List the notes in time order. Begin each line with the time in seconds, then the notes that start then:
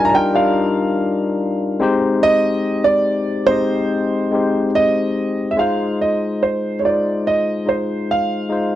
Already playing: G3 D4 D#4 F4 A#4
0.05 A#5
0.09 G3 D4 D#4 G#5
0.14 F4 A#4 G5
0.33 G3 D4 D#4 F4 A#4 F5
1.80 G#3 C4 D#4 G4 C5
2.23 D#5
2.84 D5
3.47 G#3 C4 D#4 G4 C5
3.51 D#5
4.31 G#3 C4 D#4 G4 C5
4.75 D#5
5.51 E5
5.57 G#3 D#4 F4 C5 F5
6.01 D#5
6.43 C5
6.79 G#3 C#5
6.84 D#4 F4 C5 D5
7.27 D#5
7.65 G#3 D#4 F4 C5
8.11 F5
8.49 G#3 D#4 F4 C5